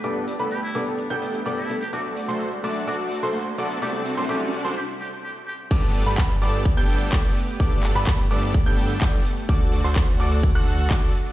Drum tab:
CC |----------------|----------------|----------------|x---------------|
HH |x-oxxxoxxxoxxxox|x-oxxxoxx-oxxxox|x-oxxxox--------|x-oxxxoxx-oxxxox|
TB |x-xxx-xxx-xxx-xx|x-xxx-xxx-xxx-xx|x-xxx-xx--------|x-xxx-xxx-xxx-xx|
CP |----------------|----------------|----------------|----x-------x---|
BD |----------------|----------------|----------------|o---o---o---o---|

CC |----------------|----------------|
HH |xxoxxxoxxxoxxxox|x-oxxxoxx-oxxxox|
TB |x-xxx-xxx-xxx-xx|x-xxx-xxx-xxx-xx|
CP |--x-x-------x---|----x-------x---|
BD |o---o---o---o---|o---o---o---o---|